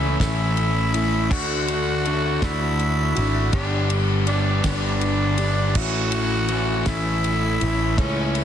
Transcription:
Already playing: C#2 E3 A3 C#4 E4
0.20 A1 A2 E3 A3 C#4 E4, kick, snare, ride
0.57 ride
0.92 A3 C#4 E4, ride
1.30 D2 D3 A3 D4 F#4, kick, crash
1.66 A3 D4 F#4, ride
2.04 D3 A3 D4 F#4, ride
2.41 D2 D3 A3 D4 E4 F#4, kick, snare, ride
2.79 ride
3.16 G#1 A3 D4 F#4, ride
3.53 G1 G2 D3 G3 B3 D4 G4, kick, ride
3.90 G3 B3 D4 G4, ride
4.27 G3 B3 D4 G4, ride
4.64 G1 G2 D3 G3 B3 D4 G4, kick, snare, ride
5.01 ride
5.38 B3 D4 G4, ride
5.42 G3
5.75 A1 A2 E3 A3 C#4 F#4, kick, crash
5.79 E4
6.12 C#4 E4, ride
6.17 A3
6.48 E3 A3 C#4, ride
6.53 E4
6.86 A1 A2 E3 A3 C#4 E4, kick, snare, ride
7.24 ride
7.60 A1 A3 C#4 E4, ride
7.96 C#2 A2 E3 A3 C#4 E4, kick, ride
8.34 A3 C#4 E4, ride

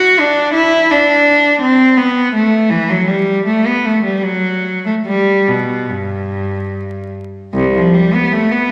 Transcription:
Already playing: F#4
0.19 D4
0.54 E4
0.91 D4
1.62 C4
1.97 B3
2.34 A3
2.70 E3
2.90 F#3
3.07 G3
3.46 A3
3.67 B3
3.86 A3
4.05 G3
4.23 F#3
4.86 A3
5.06 G3
5.48 B2
5.89 G2
7.54 C2
7.75 F3
7.94 G3
8.14 B3
8.32 A3
8.52 B3

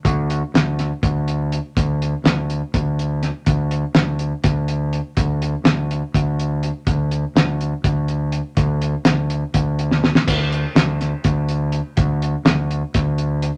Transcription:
0.05 D2, kick, closed hi-hat
0.30 closed hi-hat
0.54 D2, snare, closed hi-hat
0.79 snare, closed hi-hat
1.03 D2, kick, closed hi-hat
1.28 closed hi-hat
1.52 closed hi-hat
1.77 D2, kick, closed hi-hat
2.02 closed hi-hat
2.24 D2, snare, closed hi-hat
2.50 closed hi-hat
2.74 D2, kick, closed hi-hat
2.99 closed hi-hat
3.23 snare, closed hi-hat
3.46 D2, kick, closed hi-hat
3.71 closed hi-hat
3.95 D2, snare, closed hi-hat
4.19 closed hi-hat
4.44 D2, kick, snare, closed hi-hat
4.68 closed hi-hat
4.93 closed hi-hat
5.17 D2, kick, closed hi-hat
5.42 closed hi-hat
5.64 D2, snare, closed hi-hat
5.91 closed hi-hat
6.14 D2, kick, closed hi-hat
6.39 closed hi-hat
6.63 closed hi-hat
6.87 D2, kick, closed hi-hat
7.11 closed hi-hat
7.36 D2, snare, closed hi-hat
7.61 closed hi-hat
7.84 D2, kick, closed hi-hat
8.08 closed hi-hat
8.32 closed hi-hat
8.57 D2, kick, closed hi-hat
8.82 closed hi-hat
9.05 D2, snare, closed hi-hat
9.30 closed hi-hat
9.54 D2, kick, closed hi-hat
9.79 closed hi-hat
9.91 snare
10.04 snare
10.15 snare
10.27 D2, kick, closed hi-hat, crash
10.52 closed hi-hat
10.75 D2, snare, closed hi-hat
11.01 snare, closed hi-hat
11.24 D2, kick, closed hi-hat
11.49 closed hi-hat
11.72 closed hi-hat
11.97 D2, kick, closed hi-hat
12.22 closed hi-hat
12.45 D2, snare, closed hi-hat
12.71 closed hi-hat
12.94 D2, kick, snare, closed hi-hat
13.18 closed hi-hat
13.42 closed hi-hat

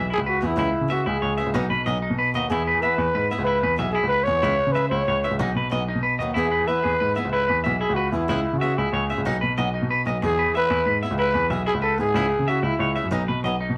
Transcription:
0.10 E4 G#4
0.18 C#2
0.26 F#4 B4
0.41 E2 E3 B3 E4 G#4
0.46 E4
0.56 C#2 E3 G#3 C#4 E4 G#4
0.81 C#3
0.88 E3 G#3 C#4 F#4 G#4 E5
1.06 C#2 E4 G#4
1.22 C#2 C#5
1.37 E3 G#3 C#4 G#4 E5
1.46 C#2
1.54 B1 F#3 B3 D#4 F#4
1.70 B2 B4
1.86 B1 F#3 B3 D#4 F#4 D#5
2.02 D#4
2.10 B2
2.19 B4
2.34 D#2 B3 D#4 F#4 D#5, muted steel-string acoustic guitar stroke
2.50 E2 E3 B3 E4 G#4
2.67 B4
2.75 E3
2.81 E3 B3 G#4 B4 E5
2.98 E2, muted clean electric guitar stroke
3.15 G#2 B4
3.31 B3 E4 G#4 E5
3.39 C#2
3.44 E4 B4
3.63 E2 B4
3.76 B1 E3 B3 E4 G#4 E5
3.92 E4 G#4
4.03 C#2
4.08 B4
4.24 E2 E3 B3 C#5
4.28 E4 G#4
4.43 C#2 E3 G#3 C#4 E4, muted steel-string acoustic guitar stroke
4.67 C#3
4.72 E3 G#3 B4 E5
4.76 G#4, muted steel-string acoustic guitar stroke
4.89 C#2 E4 C#5
5.08 C#2 C#5
5.24 E3 G#3 C#4 G#4 E5
5.31 C#2
5.39 B1 F#3 D#4 F#4, muted steel-string acoustic guitar stroke
5.55 B2 B4
5.70 B1 F#3 B3 D#4 F#4 D#5
5.88 D#4
5.95 B2
6.03 B4
6.19 D#2 F#3 B3 D#4 D#5, muted steel-string acoustic guitar stroke
6.34 E2 E3 B3 E4 G#4
6.51 B4
6.60 E3
6.67 E3 B3 E4 G#4 B4 E5
6.83 E2 G#4
7.00 G#2 B4
7.15 E3 B3 E4 G#4 E5
7.25 C#2
7.32 E4 B4
7.48 E2 B4
7.64 B1 E3 B3 E4 G#4 E5
7.80 E4 G#4
7.89 C#2
7.94 F#4 B4
8.12 E2 E3 B3 E4 G#4
8.28 C#2 G#3 C#4 E4 G#4, muted steel-string acoustic guitar stroke
8.53 C#3
8.58 E3 G#3 F#4 E5
8.63 C#4 G#4
8.78 C#2 E4 G#4
8.93 C#2 C#5
9.10 G#3 C#4 G#4 E5, muted steel-string acoustic guitar stroke
9.18 C#2
9.25 B1 F#3 B3 D#4 F#4
9.41 B2 B4
9.57 B1 F#3 B3 D#4 F#4 D#5
9.74 D#4
9.82 B2
9.91 B4
10.05 B1 F#3 B3 D#4 D#5, muted steel-string acoustic guitar stroke
10.22 E2 E4 G#4, muted steel-string acoustic guitar stroke, muted clean electric guitar stroke
10.39 B4
10.46 E3
10.55 B3 E4 G#4 B4 E5
10.70 E2 E4
10.86 G#2 B4
11.03 B3 E4 G#4 E5
11.11 C#2
11.19 E4 B4
11.34 E2 B4
11.50 B1 B3 E4 G#4 E5
11.66 E4 G#4
11.74 C#2
11.82 A4 B4
11.98 G#2 B3 E4 G#4
12.14 C#2 C#4 E4 G#4
12.39 C#3
12.48 C#4 E4 F#4 G#4 E5
12.63 C#2 E4
12.79 C#2 C#5
12.96 C#4 E4 G#4 E5
13.04 F#2
13.11 B1 F#3 B3 D#4
13.28 B2 B4
13.44 B1 F#3 B3 D#4 D#5
13.61 D#4
13.70 B2

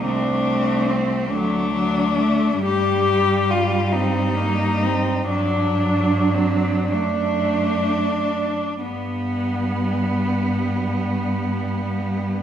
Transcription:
0.05 C2 A3 C4 D4
0.90 C4
1.30 D2 F#3 A3 D4
1.74 F#3
2.20 A3
2.63 G2 G3 G4
3.51 F4
3.92 C4 D#4
4.36 A#3
4.82 C4
5.30 G2 F#3 D4
6.35 C4
6.92 F#2 A3 D4
8.82 G2 G3 B3

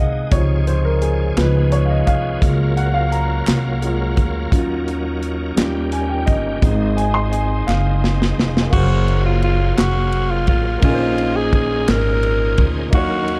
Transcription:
Already playing: C2 G#3 C4 D#4 D#5 F5 F#5 G#5
0.31 C#2 C3 F3 D#4 G#4 C#5, kick, closed hi-hat
0.67 C5, closed hi-hat
0.85 A#4
1.02 G#4, closed hi-hat
1.37 C#2 F3 B3 C#4 D#4 G#4 B4, snare, clap, closed hi-hat
1.72 C#5, closed hi-hat
1.85 F5
1.90 D#5
2.07 C2 F5, kick, closed hi-hat
2.41 C#2 F#3 G#3 A#3 F4 A#4, kick, closed hi-hat
2.77 F#5, closed hi-hat
2.94 F5
3.12 A#5, closed hi-hat
3.47 C2, snare, clap, closed hi-hat
3.82 G#3 A#3 F4, closed hi-hat
4.17 D2, kick, closed hi-hat
4.51 D#2 D#3 F#3 C#4 F4, kick, closed hi-hat
4.88 closed hi-hat
5.23 closed hi-hat
5.56 D#2 G3 C#4 F4 G4, snare, clap, closed hi-hat
5.92 G#5, closed hi-hat
6.09 G5
6.26 G1 D#5, kick, closed hi-hat
6.62 G#1 G#3 C4 D#4, kick, closed hi-hat
6.97 G#5, closed hi-hat
7.14 C6
7.31 G#5, closed hi-hat
7.67 F#1 F5, snare, clap
8.04 snare
8.22 snare
8.38 F1, snare
8.57 snare
8.69 F#1 F#3 A#3 F#4 G#4 C5 F5, kick, crash
8.73 G#4 C5 F5
9.08 ride
9.26 F4
9.42 F4, ride
9.78 F1 F#4, snare, clap, ride
10.12 ride
10.31 F4
10.47 A1 F4, kick, ride
10.79 A#1 A#2 A#3 C#4 D#4, kick, ride
10.84 F4 G#4 A#4
10.94 C5
11.18 ride
11.36 G#4
11.53 G#4, kick, ride
11.88 G#1 A#4, snare, clap, ride
12.23 ride
12.58 D2, kick, ride
12.90 D#2 D#3 A#3 D#4, kick, ride
12.94 D#3 F#3 A#3 F#4 C#5 F5
13.28 ride

